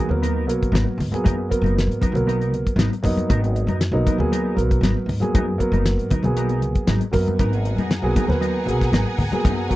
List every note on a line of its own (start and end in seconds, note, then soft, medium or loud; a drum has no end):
0.00 0.10 F#3 medium
0.08 0.47 D#2 medium
0.08 0.42 F#3 medium
0.08 0.42 A#3 medium
0.08 0.43 B3 medium
0.08 0.42 A#4 medium
0.08 muted clean electric guitar stroke soft
0.08 low conga medium
0.22 0.36 F#3 medium
0.22 0.35 B3 medium
0.22 0.35 D#4 medium
0.22 0.34 A#4 medium
0.22 closed hi-hat medium
0.35 0.47 B3 soft
0.35 0.47 D#4 soft
0.35 0.47 A#4 medium
0.47 0.70 B1 medium
0.47 1.02 F#3 medium
0.47 1.02 A#3 medium
0.47 1.02 B3 medium
0.47 1.02 A#4 medium
0.47 muted clean electric guitar stroke soft
0.47 closed hi-hat medium
0.63 kick medium
0.63 closed hi-hat soft
0.72 0.84 G#1 medium
0.72 0.87 F#3 medium
0.72 0.85 B3 medium
0.72 0.85 D#4 medium
0.72 0.85 A#4 medium
0.72 snare loud
0.72 closed hi-hat medium
0.72 high conga medium
0.86 muted clean electric guitar stroke soft
0.98 1.10 G#2 medium
0.98 muted clean electric guitar stroke soft
0.98 open hi-hat medium
0.98 low conga medium
1.11 1.44 F#3 medium
1.11 1.45 A#3 medium
1.11 1.45 B3 medium
1.11 1.45 G#4 medium
1.11 muted upright bass stroke soft
1.11 muted clean electric guitar stroke soft
1.11 closed hi-hat soft
1.11 high conga medium
1.24 1.47 F#2 loud
1.24 1.38 F#3 medium
1.24 1.38 B3 medium
1.24 1.37 D#4 medium
1.24 1.37 A#4 medium
1.24 kick loud
1.24 closed hi-hat medium
1.38 muted clean electric guitar stroke soft
1.49 2.04 F#3 medium
1.49 2.05 A#3 medium
1.49 2.05 B3 medium
1.49 2.05 A#4 medium
1.49 muted clean electric guitar stroke soft
1.49 kick medium
1.49 closed hi-hat medium
1.62 1.84 F#1 medium
1.62 1.75 B3 soft
1.62 1.76 D#4 medium
1.62 1.75 A#4 medium
1.62 high conga medium
1.66 closed hi-hat soft
1.76 muted clean electric guitar stroke soft
1.76 snare loud
1.76 closed hi-hat medium
1.87 1.99 G#2 medium
1.92 closed hi-hat soft
2.01 2.15 F#3 medium
2.01 2.14 B3 medium
2.01 2.14 D#4 medium
2.01 2.14 A#4 medium
2.01 kick medium
2.01 closed hi-hat medium
2.01 low conga medium
2.12 2.50 B1 medium
2.12 2.90 F#3 medium
2.12 2.90 A#3 medium
2.12 2.91 B3 medium
2.12 2.91 A#4 medium
2.12 muted clean electric guitar stroke soft
2.12 low conga medium
2.17 closed hi-hat soft
2.27 2.41 F#3 medium
2.27 2.40 B3 medium
2.27 2.40 D#4 medium
2.27 2.39 A#4 medium
2.27 closed hi-hat medium
2.40 2.52 B3 soft
2.40 2.52 D#4 medium
2.40 2.52 A#4 medium
2.40 closed hi-hat soft
2.50 2.63 C#2 medium
2.50 muted clean electric guitar stroke soft
2.50 closed hi-hat medium
2.67 kick medium
2.67 closed hi-hat soft
2.76 2.89 G#1 medium
2.76 2.92 F#3 medium
2.76 2.91 B3 medium
2.76 2.91 D#4 medium
2.76 2.90 A#4 medium
2.76 snare loud
2.76 closed hi-hat medium
2.76 high conga medium
2.91 muted clean electric guitar stroke soft
2.91 closed hi-hat soft
3.03 3.26 F#2 loud
3.03 3.79 F#3 medium
3.03 3.79 A#3 medium
3.03 3.79 B3 medium
3.03 3.80 D#4 medium
3.03 muted clean electric guitar stroke soft
3.03 kick medium
3.03 open hi-hat medium
3.03 low conga medium
3.17 muted clean electric guitar stroke soft
3.17 closed hi-hat soft
3.17 high conga medium
3.29 3.63 G#1 loud
3.29 3.43 F#3 medium
3.29 3.43 B3 medium
3.29 3.43 D#4 medium
3.29 3.42 A#4 loud
3.29 kick loud
3.29 closed hi-hat medium
3.44 muted clean electric guitar stroke soft
3.44 closed hi-hat soft
3.56 muted clean electric guitar stroke soft
3.56 closed hi-hat medium
3.67 3.90 F#2 medium
3.67 3.80 B3 soft
3.67 3.80 D#4 medium
3.67 3.81 A#4 medium
3.67 closed hi-hat soft
3.67 high conga medium
3.81 muted clean electric guitar stroke soft
3.81 snare medium
3.81 closed hi-hat medium
3.92 4.03 B1 medium
3.92 4.15 F#3 medium
3.92 4.15 A#3 medium
3.92 4.15 B3 medium
3.92 4.15 D#4 loud
4.06 4.20 F#3 medium
4.06 4.19 B3 medium
4.06 4.19 D#4 medium
4.06 4.18 A#4 medium
4.06 kick medium
4.06 closed hi-hat medium
4.06 high conga medium
4.06 low conga medium
4.17 4.58 D#2 medium
4.17 4.51 F#3 medium
4.17 4.51 A#3 medium
4.17 4.51 B3 medium
4.17 4.52 G#4 medium
4.17 muted clean electric guitar stroke soft
4.17 low conga medium
4.32 4.45 F#3 medium
4.32 4.44 B3 medium
4.32 4.44 D#4 medium
4.32 4.43 A#4 medium
4.32 closed hi-hat medium
4.44 4.57 B3 soft
4.44 4.57 D#4 medium
4.44 4.57 A#4 medium
4.55 4.79 B1 medium
4.55 5.10 F#3 medium
4.55 5.11 A#3 medium
4.55 5.11 B3 medium
4.55 5.11 A#4 medium
4.55 muted clean electric guitar stroke soft
4.55 closed hi-hat medium
4.71 kick medium
4.71 closed hi-hat soft
4.81 4.93 G#1 medium
4.81 4.97 F#3 medium
4.81 4.96 B3 medium
4.81 4.95 D#4 medium
4.81 4.94 A#4 medium
4.81 snare loud
4.81 closed hi-hat medium
4.81 high conga medium
4.96 muted clean electric guitar stroke soft
5.06 5.19 G#2 medium
5.06 muted clean electric guitar stroke soft
5.06 open hi-hat medium
5.06 low conga medium
5.20 5.53 F#3 medium
5.20 5.53 A#3 medium
5.20 5.54 B3 medium
5.20 5.54 G#4 medium
5.20 muted upright bass stroke soft
5.20 muted clean electric guitar stroke soft
5.20 closed hi-hat soft
5.20 high conga medium
5.35 5.56 F#2 loud
5.35 5.48 F#3 medium
5.35 5.47 B3 medium
5.35 5.47 D#4 medium
5.35 5.47 A#4 medium
5.35 kick loud
5.35 closed hi-hat medium
5.48 muted clean electric guitar stroke soft
5.58 6.13 F#3 medium
5.58 6.13 A#3 medium
5.58 6.13 B3 medium
5.58 6.13 A#4 medium
5.58 muted clean electric guitar stroke soft
5.58 kick medium
5.58 closed hi-hat medium
5.72 5.94 F#1 medium
5.72 5.85 B3 soft
5.72 5.85 D#4 medium
5.72 5.85 A#4 medium
5.72 closed hi-hat soft
5.72 high conga medium
5.86 muted clean electric guitar stroke soft
5.86 snare loud
5.86 closed hi-hat medium
5.98 6.09 G#2 medium
5.98 closed hi-hat soft
6.11 6.24 F#3 medium
6.11 6.24 B3 soft
6.11 6.24 D#4 medium
6.11 6.24 A#4 medium
6.11 kick medium
6.11 closed hi-hat medium
6.11 low conga medium
6.23 6.61 B1 medium
6.23 6.99 F#3 medium
6.23 6.99 A#3 medium
6.23 7.00 B3 medium
6.23 7.00 G#4 medium
6.23 muted clean electric guitar stroke soft
6.23 closed hi-hat soft
6.23 high conga medium
6.23 low conga medium
6.36 6.50 F#3 medium
6.36 6.50 B3 medium
6.36 6.50 D#4 medium
6.36 6.49 A#4 medium
6.36 closed hi-hat medium
6.49 6.62 B3 soft
6.49 6.62 D#4 medium
6.49 6.62 A#4 medium
6.49 closed hi-hat soft
6.61 6.73 C#2 medium
6.61 muted clean electric guitar stroke soft
6.61 closed hi-hat medium
6.75 kick medium
6.75 closed hi-hat soft
6.87 6.99 G#1 medium
6.87 7.01 F#3 medium
6.87 7.01 B3 medium
6.87 7.01 D#4 medium
6.87 7.01 A#4 medium
6.87 snare loud
6.87 closed hi-hat medium
6.87 high conga medium
7.01 muted clean electric guitar stroke soft
7.01 closed hi-hat soft
7.11 7.35 F#2 medium
7.11 7.88 F#3 medium
7.11 7.89 A#3 medium
7.11 7.89 B3 medium
7.11 7.89 A#4 medium
7.11 muted clean electric guitar stroke soft
7.11 kick medium
7.11 open hi-hat medium
7.11 low conga medium
7.27 muted clean electric guitar stroke soft
7.27 closed hi-hat soft
7.27 high conga medium
7.38 7.72 G#1 loud
7.38 7.53 F#3 medium
7.38 7.52 B3 medium
7.38 7.52 D#4 medium
7.38 9.76 G#4 medium
7.38 7.52 A#4 medium
7.38 9.76 F#5 medium
7.38 9.76 G#5 medium
7.38 9.76 A#5 medium
7.38 kick loud
7.38 closed hi-hat medium
7.53 muted clean electric guitar stroke soft
7.53 closed hi-hat soft
7.65 muted clean electric guitar stroke soft
7.65 closed hi-hat soft
7.76 7.99 F#2 medium
7.76 7.90 D#4 soft
7.76 7.90 A#4 medium
7.76 closed hi-hat soft
7.76 high conga medium
7.80 7.90 B3 soft
7.91 muted clean electric guitar stroke soft
7.91 snare loud
7.91 closed hi-hat medium
8.02 8.13 B1 medium
8.02 8.24 F#3 medium
8.02 8.25 A#3 medium
8.02 8.25 B3 medium
8.02 8.25 G#4 medium
8.16 8.30 F#3 medium
8.16 8.28 B3 medium
8.16 8.28 D#4 medium
8.16 8.28 A#4 medium
8.16 kick medium
8.16 closed hi-hat medium
8.16 high conga medium
8.16 low conga medium
8.27 8.67 D#2 medium
8.27 8.60 F#3 medium
8.27 8.61 B3 medium
8.27 8.61 A#4 medium
8.27 8.61 B4 loud
8.27 muted clean electric guitar stroke soft
8.27 snare soft
8.27 low conga medium
8.40 8.54 F#3 medium
8.40 8.55 B3 medium
8.40 8.54 D#4 medium
8.40 8.53 A#4 medium
8.40 closed hi-hat medium
8.55 8.65 B3 medium
8.55 8.66 D#4 medium
8.55 8.66 A#4 medium
8.66 8.88 B1 medium
8.66 9.21 F#3 medium
8.66 9.21 A#3 medium
8.66 9.21 B3 medium
8.66 9.22 G#4 medium
8.66 muted clean electric guitar stroke soft
8.66 closed hi-hat medium
8.81 kick medium
8.81 snare soft
8.81 closed hi-hat soft
8.92 9.04 G#1 medium
8.92 9.06 F#3 medium
8.92 9.06 B3 medium
8.92 9.05 D#4 medium
8.92 9.05 A#4 medium
8.92 snare loud
8.92 closed hi-hat medium
8.92 high conga medium
9.06 muted clean electric guitar stroke soft
9.18 9.30 G#2 medium
9.18 muted clean electric guitar stroke soft
9.18 open hi-hat medium
9.18 low conga medium
9.31 9.64 F#3 medium
9.31 9.64 A#3 medium
9.31 9.64 B3 medium
9.31 9.64 G#4 medium
9.31 muted upright bass stroke soft
9.31 muted clean electric guitar stroke soft
9.31 closed hi-hat soft
9.31 high conga medium
9.44 9.66 F#2 loud
9.44 9.58 F#3 medium
9.44 9.57 B3 medium
9.44 9.57 D#4 medium
9.44 9.57 A#4 medium
9.44 kick loud
9.44 closed hi-hat medium
9.58 muted clean electric guitar stroke soft
9.68 9.76 F#3 medium
9.68 9.76 A#3 medium
9.68 9.76 B3 medium
9.68 9.76 F#4 medium
9.68 muted clean electric guitar stroke soft
9.68 kick medium
9.68 closed hi-hat medium